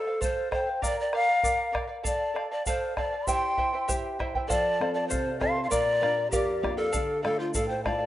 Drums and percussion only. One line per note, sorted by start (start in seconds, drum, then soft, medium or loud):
0.22 bombo low medium
0.22 shaker medium
0.52 bombo rim medium
0.52 bombo low soft
0.83 bombo low medium
0.83 shaker medium
1.13 bombo rim soft
1.44 bombo low medium
1.44 shaker medium
1.75 bombo rim medium
1.75 bombo low soft
2.05 bombo low medium
2.05 shaker medium
2.36 bombo rim soft
2.66 bombo low medium
2.66 shaker medium
2.97 bombo rim medium
2.97 bombo low soft
3.27 bombo low medium
3.27 shaker medium
3.58 bombo low medium
3.89 bombo low medium
3.89 shaker medium
4.20 bombo rim medium
4.20 bombo low medium
4.35 bombo low medium
4.50 bombo low medium
4.50 shaker medium
4.81 bombo rim medium
5.10 bombo low medium
5.10 shaker medium
5.41 bombo rim soft
5.41 bombo low soft
5.71 bombo low medium
5.71 shaker loud
6.03 bombo rim soft
6.32 bombo low medium
6.32 shaker medium
6.64 bombo rim medium
6.64 bombo low soft
6.93 bombo low medium
6.93 shaker medium
7.25 bombo rim medium
7.54 bombo low medium
7.54 shaker medium
7.86 bombo rim medium
7.86 bombo low medium